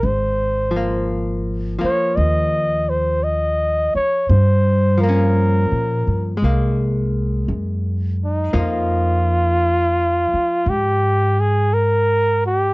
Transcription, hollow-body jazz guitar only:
0.71 1.77 F3 soft
0.77 1.80 A#3 soft
1.79 4.28 F3 soft
1.79 4.29 A#3 soft
4.98 6.37 F3 soft
5.04 6.43 A#3 soft
5.09 6.45 C#4 soft
6.37 8.52 G#3 soft
6.44 8.52 A#3 soft
8.53 12.74 F3 soft
8.53 12.74 A#3 soft
8.53 12.74 D#4 soft

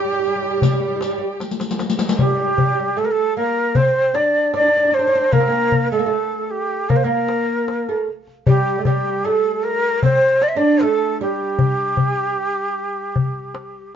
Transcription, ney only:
0.00 1.41 G4 medium
2.18 2.99 G4 medium
2.98 3.06 A4 medium
3.04 3.12 A#4 medium
3.11 3.36 A4 medium
3.36 3.77 A#4 medium
3.75 4.16 C5 medium
4.14 4.54 D5 medium
4.55 4.95 D5 loud
4.93 5.34 C5 medium
5.32 5.90 A#4 medium
5.91 6.52 A4 medium
6.50 6.90 G4 medium
6.89 6.97 A#4 medium
6.96 7.05 C5 medium
7.03 8.07 A#4 medium
8.47 8.83 G4 medium
8.85 9.26 G4 medium
9.24 9.65 A4 medium
9.63 10.03 A#4 medium
10.03 10.44 C5 loud
10.42 10.49 D5 medium
10.48 10.58 E5 medium
10.57 10.83 D5 medium
10.82 11.21 A4 medium
11.21 13.90 G4 medium

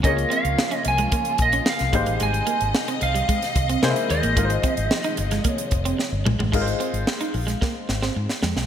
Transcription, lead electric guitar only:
0.05 0.29 D#5 medium
0.33 0.76 F5 loud
0.76 0.87 D#5 loud
0.88 1.42 G#5 loud
1.42 1.68 D#5 medium
1.69 2.22 F5 medium
2.23 2.72 G#5 loud
3.03 4.06 F5 loud
4.11 5.48 D#5 loud
5.48 6.23 C#5 loud

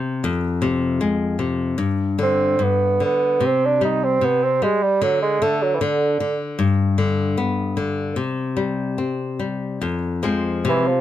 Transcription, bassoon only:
2.23 2.65 C4 medium
2.63 3.02 B3 medium
3.05 3.48 B3 medium
3.46 3.67 C4 medium
3.65 3.84 D4 medium
3.85 4.06 D#4 medium
4.04 4.26 C4 medium
4.25 4.45 B3 medium
4.44 4.65 C4 medium
4.64 4.85 G#3 medium
4.83 5.04 G3 medium
5.02 5.22 F#3 medium
5.22 5.44 G#3 medium
5.43 5.64 A3 medium
5.62 5.77 F#3 medium
5.75 5.84 E3 medium
5.82 6.41 D3 medium
10.69 10.89 E3 medium
10.88 11.01 F3 medium

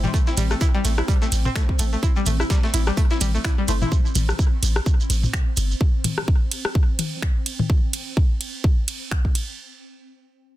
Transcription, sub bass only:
0.37 0.55 A1 loud
0.85 1.02 A1 loud
1.32 1.49 A1 medium
1.79 1.97 A1 medium
2.26 2.44 A1 loud
2.74 2.91 A1 loud
3.21 3.38 A1 loud
3.68 3.86 G1 medium
4.15 4.33 A1 loud
4.63 4.80 A1 medium
5.10 5.27 A1 loud
5.57 5.74 G1 medium

